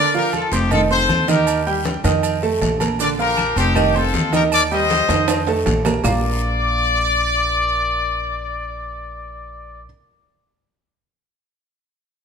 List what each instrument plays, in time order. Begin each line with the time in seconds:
Already playing: grand piano D3 D4 D5, trumpet section A#4 D5
0.14 grand piano F3 F4 F5, trumpet section G4 A#4, high conga, maracas
0.33 trumpet section F4 A4, high conga, low agogo, short guiro, maracas
0.52 upright bass F1, grand piano C4 C5 C6, trumpet section D#4 G4, high conga, low agogo, short guiro, maracas
0.71 grand piano D#3 D#4 D#5, trumpet section F4 A4, high conga, low conga, low agogo, long guiro, maracas
0.90 grand piano C4 C5 C6, trumpet section A4 C5, high conga, maracas
1.09 upright bass D#2, high conga, low agogo, short guiro, maracas
1.28 grand piano D#3 D#4 D#5, trumpet section G4 A#4, high conga, low agogo, short guiro, maracas
1.47 low agogo, long guiro, maracas
1.67 grand piano G3 G4 G5, high conga, maracas
1.85 high conga, low agogo, short guiro, maracas
2.04 upright bass F2, grand piano D#3 D#4 D#5, high conga, low agogo, short guiro, maracas
2.23 high conga, low agogo, long guiro, maracas
2.43 grand piano A3 A4 A5, high conga, maracas
2.61 upright bass A#1, high conga, low timbale, low agogo, short guiro, maracas
2.80 grand piano A#3 A#4 A#5, high conga, low agogo, short guiro, maracas
2.99 grand piano D3 D4 D5, trumpet section A#4 D5, low agogo, long guiro, maracas
3.19 grand piano F3 F4 F5, trumpet section G4 A#4, high conga, maracas
3.37 high conga, low agogo, short guiro, claves, maracas
3.56 upright bass F1, grand piano C4 C5 C6, trumpet section D#4 G4, high conga, low agogo, short guiro, maracas
3.75 grand piano D#3 D#4 D#5, high conga, low conga, low agogo, long guiro, claves, maracas
3.95 grand piano C4 C5 C6, trumpet section F4 A4, high conga, maracas
4.14 upright bass D#2, high conga, low agogo, short guiro, maracas
4.33 grand piano D#3 D#4 D#5, trumpet section G4 A#4, high conga, low agogo, short guiro, maracas
4.52 trumpet section A#4 D5, high conga, low agogo, long guiro, claves, maracas
4.71 grand piano G3 G4 G5, trumpet section C5 D#5, high conga, maracas
4.90 high conga, low agogo, short guiro, maracas
5.09 upright bass F2, grand piano D#3 D#4 D#5, high conga, high timbale, low agogo, short guiro, maracas
5.28 high conga, high timbale, low agogo, long guiro, claves, maracas
5.47 grand piano A3 A4 A5, high conga, high timbale, maracas
5.66 upright bass A#1, high conga, low timbale, low agogo, short guiro, maracas
5.85 grand piano A#3 A#4 A#5, high conga, low timbale, low agogo, short guiro, claves, maracas
6.04 upright bass A#1, grand piano A#3 F4 A#4 D5 F5 A#5, trumpet section D5, low conga, low timbale, long guiro, claves, maracas